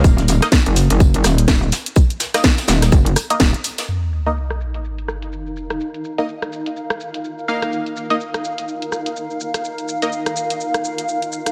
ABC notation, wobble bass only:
X:1
M:4/4
L:1/16
Q:"Swing 16ths" 1/4=125
K:Ebm
V:1 name="Wobble bass" clef=bass
E,,,3 z2 G,,,2 G,,,3 E,,,2 E,,,2 z2 | z6 E,,,2 G,,,2 z2 E,,, z3 | z16 | z16 |
z16 | z16 |]